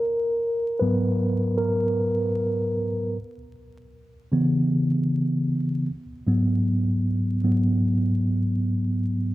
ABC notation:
X:1
M:4/4
L:1/8
Q:"Swing 16ths" 1/4=77
K:G#phr
V:1 name="Tine electric piano"
^A2 B2 A3 z | z8 | z8 |]
V:2 name="Tine electric piano" clef=bass
z2 [G,,F,B,] z4 z | z3 [C,E,B,]3 z2 | [G,,F,B,] z2 [G,,F,B,] z4 |]